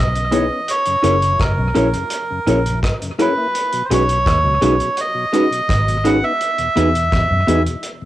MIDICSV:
0, 0, Header, 1, 7, 480
1, 0, Start_track
1, 0, Tempo, 715478
1, 456, Time_signature, 4, 2, 24, 8
1, 5403, End_track
2, 0, Start_track
2, 0, Title_t, "Melodica"
2, 0, Program_c, 0, 22
2, 0, Note_on_c, 0, 75, 91
2, 469, Note_on_c, 0, 73, 105
2, 480, Note_off_c, 0, 75, 0
2, 946, Note_on_c, 0, 70, 73
2, 957, Note_off_c, 0, 73, 0
2, 1875, Note_off_c, 0, 70, 0
2, 2153, Note_on_c, 0, 71, 89
2, 2582, Note_on_c, 0, 72, 55
2, 2592, Note_off_c, 0, 71, 0
2, 2622, Note_off_c, 0, 72, 0
2, 2638, Note_on_c, 0, 73, 98
2, 3109, Note_off_c, 0, 73, 0
2, 3119, Note_on_c, 0, 73, 87
2, 3355, Note_off_c, 0, 73, 0
2, 3359, Note_on_c, 0, 75, 100
2, 4069, Note_on_c, 0, 78, 97
2, 4089, Note_off_c, 0, 75, 0
2, 4185, Note_on_c, 0, 76, 115
2, 4189, Note_off_c, 0, 78, 0
2, 5115, Note_off_c, 0, 76, 0
2, 5403, End_track
3, 0, Start_track
3, 0, Title_t, "Clean electric guitar"
3, 0, Program_c, 1, 27
3, 211, Note_on_c, 1, 59, 81
3, 215, Note_on_c, 1, 64, 81
3, 220, Note_on_c, 1, 68, 74
3, 224, Note_on_c, 1, 73, 70
3, 281, Note_off_c, 1, 59, 0
3, 283, Note_off_c, 1, 64, 0
3, 286, Note_off_c, 1, 68, 0
3, 288, Note_off_c, 1, 73, 0
3, 688, Note_on_c, 1, 61, 68
3, 693, Note_on_c, 1, 64, 88
3, 697, Note_on_c, 1, 70, 86
3, 700, Note_on_c, 1, 73, 87
3, 760, Note_off_c, 1, 61, 0
3, 763, Note_off_c, 1, 64, 0
3, 765, Note_off_c, 1, 70, 0
3, 766, Note_off_c, 1, 73, 0
3, 1171, Note_on_c, 1, 61, 81
3, 1177, Note_on_c, 1, 64, 85
3, 1181, Note_on_c, 1, 70, 85
3, 1184, Note_on_c, 1, 73, 96
3, 1242, Note_off_c, 1, 61, 0
3, 1245, Note_off_c, 1, 64, 0
3, 1246, Note_off_c, 1, 70, 0
3, 1248, Note_off_c, 1, 73, 0
3, 1656, Note_on_c, 1, 61, 72
3, 1660, Note_on_c, 1, 64, 73
3, 1665, Note_on_c, 1, 70, 80
3, 1667, Note_on_c, 1, 73, 80
3, 1724, Note_off_c, 1, 61, 0
3, 1726, Note_off_c, 1, 64, 0
3, 1729, Note_off_c, 1, 70, 0
3, 1730, Note_off_c, 1, 73, 0
3, 2140, Note_on_c, 1, 61, 82
3, 2145, Note_on_c, 1, 64, 73
3, 2149, Note_on_c, 1, 70, 92
3, 2152, Note_on_c, 1, 73, 77
3, 2206, Note_off_c, 1, 61, 0
3, 2209, Note_off_c, 1, 64, 0
3, 2211, Note_off_c, 1, 70, 0
3, 2212, Note_off_c, 1, 73, 0
3, 2619, Note_on_c, 1, 56, 79
3, 2623, Note_on_c, 1, 63, 79
3, 2627, Note_on_c, 1, 66, 78
3, 2631, Note_on_c, 1, 71, 85
3, 2685, Note_off_c, 1, 56, 0
3, 2688, Note_off_c, 1, 63, 0
3, 2690, Note_off_c, 1, 66, 0
3, 2692, Note_off_c, 1, 71, 0
3, 3096, Note_on_c, 1, 56, 89
3, 3101, Note_on_c, 1, 63, 87
3, 3105, Note_on_c, 1, 66, 86
3, 3110, Note_on_c, 1, 71, 85
3, 3164, Note_off_c, 1, 56, 0
3, 3167, Note_off_c, 1, 63, 0
3, 3169, Note_off_c, 1, 66, 0
3, 3171, Note_off_c, 1, 71, 0
3, 3574, Note_on_c, 1, 56, 75
3, 3580, Note_on_c, 1, 63, 83
3, 3584, Note_on_c, 1, 66, 95
3, 3588, Note_on_c, 1, 71, 86
3, 3643, Note_off_c, 1, 56, 0
3, 3646, Note_off_c, 1, 63, 0
3, 3648, Note_off_c, 1, 66, 0
3, 3650, Note_off_c, 1, 71, 0
3, 4052, Note_on_c, 1, 56, 80
3, 4057, Note_on_c, 1, 63, 97
3, 4061, Note_on_c, 1, 66, 87
3, 4065, Note_on_c, 1, 71, 90
3, 4122, Note_off_c, 1, 56, 0
3, 4125, Note_off_c, 1, 63, 0
3, 4127, Note_off_c, 1, 66, 0
3, 4129, Note_off_c, 1, 71, 0
3, 4535, Note_on_c, 1, 59, 85
3, 4542, Note_on_c, 1, 63, 96
3, 4545, Note_on_c, 1, 68, 89
3, 4549, Note_on_c, 1, 71, 94
3, 4604, Note_off_c, 1, 59, 0
3, 4607, Note_off_c, 1, 63, 0
3, 4609, Note_off_c, 1, 68, 0
3, 4611, Note_off_c, 1, 71, 0
3, 5013, Note_on_c, 1, 59, 74
3, 5018, Note_on_c, 1, 63, 74
3, 5022, Note_on_c, 1, 68, 81
3, 5025, Note_on_c, 1, 71, 82
3, 5083, Note_off_c, 1, 59, 0
3, 5086, Note_off_c, 1, 63, 0
3, 5087, Note_off_c, 1, 68, 0
3, 5089, Note_off_c, 1, 71, 0
3, 5403, End_track
4, 0, Start_track
4, 0, Title_t, "Tine electric piano"
4, 0, Program_c, 2, 4
4, 218, Note_on_c, 2, 63, 85
4, 218, Note_on_c, 2, 68, 84
4, 219, Note_on_c, 2, 64, 76
4, 221, Note_on_c, 2, 71, 99
4, 306, Note_off_c, 2, 63, 0
4, 307, Note_off_c, 2, 64, 0
4, 307, Note_off_c, 2, 68, 0
4, 308, Note_off_c, 2, 71, 0
4, 694, Note_on_c, 2, 61, 89
4, 696, Note_on_c, 2, 64, 76
4, 696, Note_on_c, 2, 68, 77
4, 698, Note_on_c, 2, 70, 88
4, 784, Note_off_c, 2, 61, 0
4, 786, Note_off_c, 2, 64, 0
4, 786, Note_off_c, 2, 68, 0
4, 786, Note_off_c, 2, 70, 0
4, 1173, Note_on_c, 2, 61, 83
4, 1175, Note_on_c, 2, 64, 77
4, 1177, Note_on_c, 2, 68, 80
4, 1177, Note_on_c, 2, 70, 92
4, 1264, Note_off_c, 2, 61, 0
4, 1265, Note_off_c, 2, 64, 0
4, 1266, Note_off_c, 2, 68, 0
4, 1266, Note_off_c, 2, 70, 0
4, 1658, Note_on_c, 2, 61, 75
4, 1659, Note_on_c, 2, 64, 71
4, 1662, Note_on_c, 2, 68, 72
4, 1662, Note_on_c, 2, 70, 77
4, 1746, Note_off_c, 2, 61, 0
4, 1747, Note_off_c, 2, 64, 0
4, 1748, Note_off_c, 2, 68, 0
4, 1748, Note_off_c, 2, 70, 0
4, 2138, Note_on_c, 2, 61, 86
4, 2138, Note_on_c, 2, 64, 84
4, 2140, Note_on_c, 2, 68, 82
4, 2142, Note_on_c, 2, 70, 99
4, 2227, Note_off_c, 2, 61, 0
4, 2227, Note_off_c, 2, 64, 0
4, 2228, Note_off_c, 2, 68, 0
4, 2228, Note_off_c, 2, 70, 0
4, 2622, Note_on_c, 2, 61, 83
4, 2625, Note_on_c, 2, 63, 81
4, 2626, Note_on_c, 2, 66, 82
4, 2627, Note_on_c, 2, 68, 102
4, 2709, Note_off_c, 2, 61, 0
4, 2710, Note_off_c, 2, 63, 0
4, 2710, Note_off_c, 2, 66, 0
4, 2711, Note_off_c, 2, 68, 0
4, 3097, Note_on_c, 2, 61, 85
4, 3098, Note_on_c, 2, 63, 85
4, 3102, Note_on_c, 2, 66, 81
4, 3102, Note_on_c, 2, 68, 107
4, 3186, Note_off_c, 2, 61, 0
4, 3187, Note_off_c, 2, 63, 0
4, 3188, Note_off_c, 2, 68, 0
4, 3189, Note_off_c, 2, 66, 0
4, 3579, Note_on_c, 2, 61, 84
4, 3582, Note_on_c, 2, 63, 69
4, 3582, Note_on_c, 2, 66, 71
4, 3584, Note_on_c, 2, 68, 86
4, 3667, Note_off_c, 2, 61, 0
4, 3669, Note_off_c, 2, 63, 0
4, 3669, Note_off_c, 2, 66, 0
4, 3670, Note_off_c, 2, 68, 0
4, 4057, Note_on_c, 2, 61, 93
4, 4059, Note_on_c, 2, 63, 81
4, 4060, Note_on_c, 2, 66, 78
4, 4063, Note_on_c, 2, 68, 100
4, 4146, Note_off_c, 2, 61, 0
4, 4147, Note_off_c, 2, 63, 0
4, 4148, Note_off_c, 2, 66, 0
4, 4149, Note_off_c, 2, 68, 0
4, 4532, Note_on_c, 2, 59, 83
4, 4534, Note_on_c, 2, 63, 77
4, 4535, Note_on_c, 2, 66, 76
4, 4537, Note_on_c, 2, 68, 98
4, 4624, Note_off_c, 2, 59, 0
4, 4625, Note_off_c, 2, 63, 0
4, 4625, Note_off_c, 2, 66, 0
4, 4626, Note_off_c, 2, 68, 0
4, 5014, Note_on_c, 2, 59, 85
4, 5015, Note_on_c, 2, 63, 83
4, 5017, Note_on_c, 2, 66, 78
4, 5020, Note_on_c, 2, 68, 99
4, 5105, Note_off_c, 2, 59, 0
4, 5105, Note_off_c, 2, 63, 0
4, 5106, Note_off_c, 2, 66, 0
4, 5108, Note_off_c, 2, 68, 0
4, 5403, End_track
5, 0, Start_track
5, 0, Title_t, "Tonewheel organ"
5, 0, Program_c, 3, 16
5, 100, Note_on_c, 3, 49, 55
5, 168, Note_off_c, 3, 49, 0
5, 213, Note_on_c, 3, 52, 67
5, 214, Note_on_c, 3, 59, 61
5, 216, Note_on_c, 3, 61, 76
5, 286, Note_off_c, 3, 52, 0
5, 286, Note_off_c, 3, 59, 0
5, 287, Note_off_c, 3, 61, 0
5, 335, Note_on_c, 3, 59, 67
5, 341, Note_on_c, 3, 61, 71
5, 405, Note_off_c, 3, 59, 0
5, 408, Note_off_c, 3, 61, 0
5, 581, Note_on_c, 3, 49, 60
5, 583, Note_on_c, 3, 42, 59
5, 648, Note_off_c, 3, 49, 0
5, 649, Note_off_c, 3, 42, 0
5, 698, Note_on_c, 3, 54, 66
5, 698, Note_on_c, 3, 58, 63
5, 701, Note_on_c, 3, 64, 76
5, 768, Note_off_c, 3, 54, 0
5, 768, Note_off_c, 3, 58, 0
5, 770, Note_off_c, 3, 64, 0
5, 823, Note_on_c, 3, 42, 50
5, 825, Note_on_c, 3, 49, 49
5, 889, Note_off_c, 3, 42, 0
5, 890, Note_off_c, 3, 49, 0
5, 1063, Note_on_c, 3, 42, 51
5, 1064, Note_on_c, 3, 49, 58
5, 1129, Note_off_c, 3, 42, 0
5, 1130, Note_off_c, 3, 49, 0
5, 1182, Note_on_c, 3, 54, 69
5, 1183, Note_on_c, 3, 58, 61
5, 1183, Note_on_c, 3, 64, 73
5, 1250, Note_off_c, 3, 54, 0
5, 1251, Note_off_c, 3, 58, 0
5, 1251, Note_off_c, 3, 64, 0
5, 1306, Note_on_c, 3, 42, 56
5, 1307, Note_on_c, 3, 49, 55
5, 1371, Note_off_c, 3, 42, 0
5, 1371, Note_off_c, 3, 49, 0
5, 1544, Note_on_c, 3, 49, 51
5, 1547, Note_on_c, 3, 42, 54
5, 1610, Note_off_c, 3, 49, 0
5, 1611, Note_off_c, 3, 42, 0
5, 1658, Note_on_c, 3, 58, 67
5, 1659, Note_on_c, 3, 54, 71
5, 1663, Note_on_c, 3, 64, 73
5, 1728, Note_off_c, 3, 58, 0
5, 1729, Note_off_c, 3, 54, 0
5, 1731, Note_off_c, 3, 64, 0
5, 1784, Note_on_c, 3, 49, 53
5, 1785, Note_on_c, 3, 42, 52
5, 1850, Note_off_c, 3, 42, 0
5, 1850, Note_off_c, 3, 49, 0
5, 2024, Note_on_c, 3, 49, 59
5, 2025, Note_on_c, 3, 42, 58
5, 2090, Note_off_c, 3, 42, 0
5, 2090, Note_off_c, 3, 49, 0
5, 2135, Note_on_c, 3, 58, 72
5, 2136, Note_on_c, 3, 54, 70
5, 2140, Note_on_c, 3, 64, 86
5, 2207, Note_off_c, 3, 54, 0
5, 2207, Note_off_c, 3, 58, 0
5, 2209, Note_off_c, 3, 64, 0
5, 2264, Note_on_c, 3, 58, 73
5, 2268, Note_on_c, 3, 64, 74
5, 2330, Note_off_c, 3, 58, 0
5, 2332, Note_off_c, 3, 64, 0
5, 2500, Note_on_c, 3, 54, 56
5, 2501, Note_on_c, 3, 47, 53
5, 2568, Note_off_c, 3, 47, 0
5, 2568, Note_off_c, 3, 54, 0
5, 2616, Note_on_c, 3, 56, 66
5, 2617, Note_on_c, 3, 59, 65
5, 2619, Note_on_c, 3, 63, 69
5, 2687, Note_off_c, 3, 56, 0
5, 2688, Note_off_c, 3, 59, 0
5, 2689, Note_off_c, 3, 63, 0
5, 2737, Note_on_c, 3, 47, 49
5, 2739, Note_on_c, 3, 54, 57
5, 2807, Note_off_c, 3, 47, 0
5, 2807, Note_off_c, 3, 54, 0
5, 2977, Note_on_c, 3, 54, 53
5, 2978, Note_on_c, 3, 47, 58
5, 3046, Note_off_c, 3, 54, 0
5, 3047, Note_off_c, 3, 47, 0
5, 3094, Note_on_c, 3, 56, 69
5, 3095, Note_on_c, 3, 59, 67
5, 3096, Note_on_c, 3, 63, 75
5, 3167, Note_off_c, 3, 56, 0
5, 3167, Note_off_c, 3, 59, 0
5, 3168, Note_off_c, 3, 63, 0
5, 3215, Note_on_c, 3, 47, 55
5, 3217, Note_on_c, 3, 54, 57
5, 3286, Note_off_c, 3, 47, 0
5, 3287, Note_off_c, 3, 54, 0
5, 3451, Note_on_c, 3, 54, 52
5, 3452, Note_on_c, 3, 47, 51
5, 3523, Note_off_c, 3, 54, 0
5, 3524, Note_off_c, 3, 47, 0
5, 3570, Note_on_c, 3, 56, 67
5, 3571, Note_on_c, 3, 59, 67
5, 3573, Note_on_c, 3, 63, 78
5, 3645, Note_off_c, 3, 56, 0
5, 3645, Note_off_c, 3, 59, 0
5, 3646, Note_off_c, 3, 63, 0
5, 3695, Note_on_c, 3, 54, 52
5, 3696, Note_on_c, 3, 47, 49
5, 3766, Note_off_c, 3, 47, 0
5, 3766, Note_off_c, 3, 54, 0
5, 3936, Note_on_c, 3, 54, 52
5, 3939, Note_on_c, 3, 47, 52
5, 4006, Note_off_c, 3, 54, 0
5, 4007, Note_off_c, 3, 47, 0
5, 4051, Note_on_c, 3, 59, 68
5, 4052, Note_on_c, 3, 56, 73
5, 4053, Note_on_c, 3, 63, 82
5, 4125, Note_off_c, 3, 59, 0
5, 4126, Note_off_c, 3, 56, 0
5, 4126, Note_off_c, 3, 63, 0
5, 4175, Note_on_c, 3, 59, 66
5, 4179, Note_on_c, 3, 63, 82
5, 4246, Note_off_c, 3, 59, 0
5, 4248, Note_off_c, 3, 63, 0
5, 4415, Note_on_c, 3, 47, 58
5, 4417, Note_on_c, 3, 40, 59
5, 4485, Note_off_c, 3, 47, 0
5, 4487, Note_off_c, 3, 40, 0
5, 4533, Note_on_c, 3, 52, 69
5, 4534, Note_on_c, 3, 56, 60
5, 4535, Note_on_c, 3, 63, 78
5, 4606, Note_off_c, 3, 52, 0
5, 4607, Note_off_c, 3, 56, 0
5, 4607, Note_off_c, 3, 63, 0
5, 4655, Note_on_c, 3, 40, 49
5, 4656, Note_on_c, 3, 47, 50
5, 4726, Note_off_c, 3, 40, 0
5, 4726, Note_off_c, 3, 47, 0
5, 4895, Note_on_c, 3, 40, 60
5, 4896, Note_on_c, 3, 47, 55
5, 4966, Note_off_c, 3, 40, 0
5, 4966, Note_off_c, 3, 47, 0
5, 5016, Note_on_c, 3, 56, 59
5, 5017, Note_on_c, 3, 52, 74
5, 5018, Note_on_c, 3, 63, 71
5, 5088, Note_off_c, 3, 52, 0
5, 5088, Note_off_c, 3, 56, 0
5, 5089, Note_off_c, 3, 63, 0
5, 5138, Note_on_c, 3, 47, 53
5, 5139, Note_on_c, 3, 40, 58
5, 5207, Note_off_c, 3, 47, 0
5, 5208, Note_off_c, 3, 40, 0
5, 5378, Note_on_c, 3, 47, 50
5, 5379, Note_on_c, 3, 40, 52
5, 5403, Note_off_c, 3, 40, 0
5, 5403, Note_off_c, 3, 47, 0
5, 5403, End_track
6, 0, Start_track
6, 0, Title_t, "Fingered electric bass"
6, 0, Program_c, 4, 33
6, 0, Note_on_c, 4, 35, 84
6, 326, Note_off_c, 4, 35, 0
6, 698, Note_on_c, 4, 30, 99
6, 927, Note_off_c, 4, 30, 0
6, 938, Note_on_c, 4, 30, 82
6, 1054, Note_off_c, 4, 30, 0
6, 1059, Note_on_c, 4, 35, 79
6, 1171, Note_off_c, 4, 35, 0
6, 1181, Note_on_c, 4, 34, 85
6, 1296, Note_off_c, 4, 34, 0
6, 1658, Note_on_c, 4, 34, 95
6, 1887, Note_off_c, 4, 34, 0
6, 2623, Note_on_c, 4, 35, 91
6, 2850, Note_off_c, 4, 35, 0
6, 2860, Note_on_c, 4, 39, 85
6, 2976, Note_off_c, 4, 39, 0
6, 2979, Note_on_c, 4, 37, 87
6, 3092, Note_off_c, 4, 37, 0
6, 3099, Note_on_c, 4, 35, 99
6, 3215, Note_off_c, 4, 35, 0
6, 3821, Note_on_c, 4, 32, 90
6, 4166, Note_off_c, 4, 32, 0
6, 4542, Note_on_c, 4, 40, 92
6, 4769, Note_off_c, 4, 40, 0
6, 4781, Note_on_c, 4, 40, 77
6, 4896, Note_off_c, 4, 40, 0
6, 4902, Note_on_c, 4, 42, 91
6, 5013, Note_off_c, 4, 42, 0
6, 5017, Note_on_c, 4, 40, 88
6, 5134, Note_off_c, 4, 40, 0
6, 5403, End_track
7, 0, Start_track
7, 0, Title_t, "Drums"
7, 104, Note_on_c, 9, 42, 52
7, 171, Note_off_c, 9, 42, 0
7, 216, Note_on_c, 9, 42, 66
7, 283, Note_off_c, 9, 42, 0
7, 458, Note_on_c, 9, 42, 78
7, 525, Note_off_c, 9, 42, 0
7, 574, Note_on_c, 9, 42, 51
7, 641, Note_off_c, 9, 42, 0
7, 696, Note_on_c, 9, 42, 81
7, 763, Note_off_c, 9, 42, 0
7, 820, Note_on_c, 9, 42, 49
7, 887, Note_off_c, 9, 42, 0
7, 936, Note_on_c, 9, 36, 107
7, 937, Note_on_c, 9, 42, 75
7, 945, Note_on_c, 9, 37, 104
7, 1004, Note_off_c, 9, 36, 0
7, 1004, Note_off_c, 9, 42, 0
7, 1012, Note_off_c, 9, 37, 0
7, 1177, Note_on_c, 9, 42, 59
7, 1244, Note_off_c, 9, 42, 0
7, 1299, Note_on_c, 9, 42, 45
7, 1366, Note_off_c, 9, 42, 0
7, 1410, Note_on_c, 9, 42, 78
7, 1477, Note_off_c, 9, 42, 0
7, 1660, Note_on_c, 9, 42, 66
7, 1727, Note_off_c, 9, 42, 0
7, 1785, Note_on_c, 9, 42, 49
7, 1852, Note_off_c, 9, 42, 0
7, 1898, Note_on_c, 9, 36, 100
7, 1903, Note_on_c, 9, 42, 94
7, 1907, Note_on_c, 9, 37, 109
7, 1965, Note_off_c, 9, 36, 0
7, 1970, Note_off_c, 9, 42, 0
7, 1974, Note_off_c, 9, 37, 0
7, 2026, Note_on_c, 9, 42, 54
7, 2093, Note_off_c, 9, 42, 0
7, 2143, Note_on_c, 9, 42, 70
7, 2210, Note_off_c, 9, 42, 0
7, 2381, Note_on_c, 9, 42, 74
7, 2448, Note_off_c, 9, 42, 0
7, 2500, Note_on_c, 9, 42, 52
7, 2567, Note_off_c, 9, 42, 0
7, 2625, Note_on_c, 9, 42, 86
7, 2693, Note_off_c, 9, 42, 0
7, 2744, Note_on_c, 9, 42, 49
7, 2811, Note_off_c, 9, 42, 0
7, 2859, Note_on_c, 9, 36, 95
7, 2859, Note_on_c, 9, 42, 78
7, 2867, Note_on_c, 9, 37, 101
7, 2926, Note_off_c, 9, 36, 0
7, 2926, Note_off_c, 9, 42, 0
7, 2934, Note_off_c, 9, 37, 0
7, 3101, Note_on_c, 9, 42, 70
7, 3168, Note_off_c, 9, 42, 0
7, 3221, Note_on_c, 9, 42, 46
7, 3288, Note_off_c, 9, 42, 0
7, 3335, Note_on_c, 9, 42, 80
7, 3402, Note_off_c, 9, 42, 0
7, 3580, Note_on_c, 9, 42, 65
7, 3647, Note_off_c, 9, 42, 0
7, 3706, Note_on_c, 9, 42, 50
7, 3774, Note_off_c, 9, 42, 0
7, 3818, Note_on_c, 9, 36, 116
7, 3822, Note_on_c, 9, 42, 93
7, 3825, Note_on_c, 9, 37, 103
7, 3885, Note_off_c, 9, 36, 0
7, 3889, Note_off_c, 9, 42, 0
7, 3892, Note_off_c, 9, 37, 0
7, 3947, Note_on_c, 9, 42, 52
7, 4014, Note_off_c, 9, 42, 0
7, 4059, Note_on_c, 9, 42, 60
7, 4126, Note_off_c, 9, 42, 0
7, 4299, Note_on_c, 9, 42, 69
7, 4366, Note_off_c, 9, 42, 0
7, 4416, Note_on_c, 9, 42, 52
7, 4483, Note_off_c, 9, 42, 0
7, 4540, Note_on_c, 9, 42, 74
7, 4607, Note_off_c, 9, 42, 0
7, 4664, Note_on_c, 9, 42, 53
7, 4731, Note_off_c, 9, 42, 0
7, 4778, Note_on_c, 9, 36, 102
7, 4778, Note_on_c, 9, 42, 72
7, 4786, Note_on_c, 9, 37, 100
7, 4845, Note_off_c, 9, 36, 0
7, 4845, Note_off_c, 9, 42, 0
7, 4853, Note_off_c, 9, 37, 0
7, 5020, Note_on_c, 9, 42, 68
7, 5087, Note_off_c, 9, 42, 0
7, 5142, Note_on_c, 9, 42, 47
7, 5209, Note_off_c, 9, 42, 0
7, 5253, Note_on_c, 9, 42, 75
7, 5320, Note_off_c, 9, 42, 0
7, 5403, End_track
0, 0, End_of_file